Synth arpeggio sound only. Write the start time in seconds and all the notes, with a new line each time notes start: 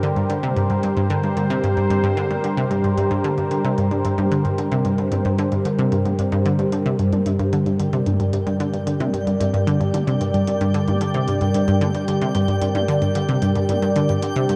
0.03 D3
0.16 G2
0.30 D3
0.43 C3
0.56 G2
0.70 G2
0.83 G2
0.97 G2
1.10 D3
1.23 G2
1.37 D3
1.50 C3
1.63 G2
1.77 G2
1.90 G2
2.04 G2
2.17 D3
2.31 G2
2.44 D3
2.57 C3
2.71 G2
2.84 G2
2.97 G2
3.11 G2
3.24 D3
3.38 G2
3.51 D3
3.65 C3
3.78 G2
3.91 G2
4.05 G2
4.18 G2
4.31 D3
4.45 G2
4.58 D3
4.72 C3
4.85 G2
4.98 G2
5.12 G2
5.25 G2
5.39 D3
5.52 G2
5.65 D3
5.79 C3
5.92 G2
6.05 G2
6.19 G2
6.32 G2
6.46 D3
6.59 G2
6.73 D3
6.86 C3
6.99 G2
7.13 G2
7.26 G2
7.39 G2
7.53 D3
7.66 G2
7.80 D3
7.93 C3
8.07 G2
8.20 G2
8.33 G2
8.47 G2
8.60 D3
8.73 G2
8.87 D3
9.00 C3
9.14 G2
9.27 G2
9.40 G2
9.54 G2
9.67 D3
9.80 G2
9.94 D3
10.07 C3
10.21 G2
10.34 G2
10.48 G2
10.61 G2
10.74 D3
10.88 G2
11.01 D3
11.14 C3
11.28 G2
11.41 G2
11.55 G2
11.68 G2
11.81 D3
11.95 G2
12.08 D3
12.22 C3
12.35 G2
12.48 G2
12.62 G2
12.75 G2
12.88 D3
13.02 G2
13.15 D3
13.29 C3
13.42 G2
13.56 G2
13.69 G2
13.82 G2
13.96 D3
14.09 G2
14.23 D3
14.36 C3
14.49 G2